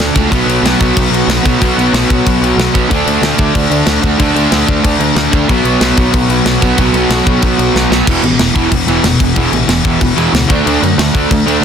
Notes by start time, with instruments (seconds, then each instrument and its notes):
Already playing: distorted electric guitar D3, overdriven electric guitar D3 A3 D4
0.00 distorted electric guitar A3 D4, snare
0.14 picked electric bass C#2, distorted electric guitar D3 A3 D4, kick, crash
0.29 picked electric bass B1, distorted electric guitar B2 F#3 B3, kick, crash
0.46 picked electric bass B1, distorted electric guitar B2 F#3 B3, crash
0.62 picked electric bass B1, distorted electric guitar B2 F#3 B3, crash
0.66 snare
0.79 picked electric bass B1, distorted electric guitar B2 F#3 B3, kick, crash
0.96 picked electric bass B1, distorted electric guitar B2 F#3 B3, kick, crash
1.10 picked electric bass B1, distorted electric guitar B2 F#3 B3, crash
1.27 picked electric bass B1, distorted electric guitar B2 F#3 B3, snare, crash
1.44 picked electric bass B1, distorted electric guitar B2 F#3 B3, kick, crash
1.59 picked electric bass B1, distorted electric guitar B2 F#3 B3, kick, crash
1.77 picked electric bass B1, distorted electric guitar B2 F#3 B3, crash
1.93 picked electric bass B1, distorted electric guitar B2 F#3 B3, snare, crash
2.09 picked electric bass B1, distorted electric guitar B2 F#3 B3, kick, crash
2.25 picked electric bass B1, distorted electric guitar B2 F#3 B3, kick, crash
2.41 picked electric bass B1, distorted electric guitar B2 F#3 B3, crash
2.56 picked electric bass B1, distorted electric guitar B2 F#3 B3, snare, crash
2.74 picked electric bass B1, distorted electric guitar B2 F#3 B3, kick, crash
2.89 picked electric bass D2, distorted electric guitar D3 A3 D4, kick, crash
3.06 picked electric bass D2, distorted electric guitar D3 A3 D4, crash
3.21 picked electric bass D2, distorted electric guitar D3 A3 D4, snare, crash
3.37 picked electric bass D2, distorted electric guitar D3 A3 D4, kick, crash
3.54 picked electric bass D2, distorted electric guitar D3 A3 D4, kick, crash
3.70 picked electric bass D2, distorted electric guitar D3 A3 D4, crash
3.85 picked electric bass D2, distorted electric guitar D3 A3 D4, snare, crash
4.01 picked electric bass D2, distorted electric guitar D3 A3 D4, kick, crash
4.18 picked electric bass D2, distorted electric guitar D3 A3 D4, kick, crash
4.34 picked electric bass D2, distorted electric guitar D3 A3 D4, crash
4.51 picked electric bass D2, distorted electric guitar D3 A3 D4, snare, crash
4.66 picked electric bass D2, distorted electric guitar D3 A3 D4, kick, crash
4.83 picked electric bass D2, distorted electric guitar D3 A3 D4, kick, crash
4.99 picked electric bass D2, distorted electric guitar D3 A3 D4, crash
5.15 picked electric bass D2, distorted electric guitar D3 A3 D4, snare, crash
5.32 picked electric bass D2, distorted electric guitar D3 A3 D4, kick, crash
5.48 picked electric bass B1, distorted electric guitar B2 F#3 B3, kick, crash
5.64 picked electric bass B1, distorted electric guitar B2 F#3 B3, crash
5.80 picked electric bass B1, distorted electric guitar B2 F#3 B3, snare, crash
5.96 picked electric bass B1, distorted electric guitar B2 F#3 B3, kick, crash
6.11 picked electric bass B1, distorted electric guitar B2 F#3 B3, kick, crash
6.28 picked electric bass B1, distorted electric guitar B2 F#3 B3, crash
6.44 picked electric bass B1, distorted electric guitar B2 F#3 B3, snare, crash
6.61 picked electric bass B1, distorted electric guitar B2 F#3 B3, kick, crash
6.76 picked electric bass B1, distorted electric guitar B2 F#3 B3, kick, crash
6.93 picked electric bass B1, distorted electric guitar B2 F#3 B3, crash
7.09 picked electric bass B1, distorted electric guitar B2 F#3 B3, snare, crash
7.26 picked electric bass B1, distorted electric guitar B2 F#3 B3, kick, crash
7.42 picked electric bass B1, distorted electric guitar B2 F#3 B3, kick, crash
7.57 picked electric bass B1, distorted electric guitar B2 F#3 B3, crash
7.74 picked electric bass B1, distorted electric guitar B2 F#3 B3, snare
7.90 picked electric bass B1, distorted electric guitar B2 F#3 B3, snare
8.06 picked electric bass E1, distorted electric guitar E2 B2 E3, kick, crash
8.22 picked electric bass A1, overdriven electric guitar E2 B2, crash
8.38 picked electric bass E1, overdriven electric guitar E2 B2, snare, crash
8.54 picked electric bass E1, overdriven electric guitar E2 B2 E3, kick, crash
8.69 picked electric bass E1, distorted electric guitar E2 B2 E3, kick, crash
8.87 picked electric bass E1, overdriven electric guitar E2 B2 E3, crash
9.03 picked electric bass E1, overdriven electric guitar E2 B2, snare, crash
9.20 picked electric bass E1, overdriven electric guitar E2 B2, kick, crash
9.35 picked electric bass E1, distorted electric guitar E2 B2 E3, kick, crash
9.52 picked electric bass A1, overdriven electric guitar E2 B2, crash
9.68 picked electric bass E1, overdriven electric guitar E2 B2, snare, crash
9.84 picked electric bass E1, overdriven electric guitar E2 B2 E3, kick, crash
9.99 picked electric bass E1, distorted electric guitar E2 B2 E3, kick, crash
10.17 picked electric bass E1, overdriven electric guitar E2 B2 E3, crash
10.33 picked electric bass C#2, overdriven electric guitar E2 B2, snare, crash
10.48 picked electric bass D2, distorted electric guitar D3 A3 D4, kick, crash
10.52 distorted electric guitar D4
10.66 picked electric bass D2, overdriven electric guitar D3 A3 D4, crash
10.82 picked electric bass F#2, overdriven electric guitar D3 A3, crash
10.98 picked electric bass D2, overdriven electric guitar D3 A3, snare, crash
11.13 picked electric bass D2, distorted electric guitar D3 A3 D4, kick, crash
11.31 picked electric bass D2, overdriven electric guitar D3 A3, kick, crash
11.46 picked electric bass D2, overdriven electric guitar D3 A3 D4, crash
11.61 picked electric bass D2